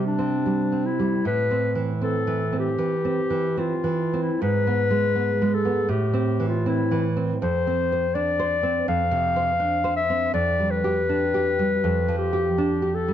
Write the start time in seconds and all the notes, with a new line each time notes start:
Already playing: C3 G3
0.06 D4
0.19 C4
0.46 G3
0.72 C4
0.86 E4
0.99 G3
1.25 A2 B4
1.51 C4
1.75 E3
2.01 C4 A4
2.27 E3
2.53 C4
2.59 G4
2.78 E3
3.05 C4
3.30 E3
3.57 C4 F4
3.84 E3
4.13 C4
4.22 E4
4.42 G#2 B4
4.67 B3
4.91 G#3
5.15 B3
5.42 G#3
5.54 A4
5.65 B3
5.89 A2 G4
6.14 C4
6.40 E3
6.48 F4
6.66 C4 E4
6.91 E3
7.17 C4
7.42 F2 C5
7.67 C4
7.92 C5
8.15 D4 D5
8.39 C5
8.63 C4
8.88 F2 F5
9.11 C3
9.36 C5
9.60 D4
9.84 C5
9.96 E5
10.10 C4
10.34 F2 D5
10.60 G3
10.71 B4
10.84 G4
11.09 D4
11.34 G4
11.59 G3
11.84 F2
12.08 F3
12.18 G4
12.33 G4
12.58 D4
12.82 G4
12.95 A4
13.08 G3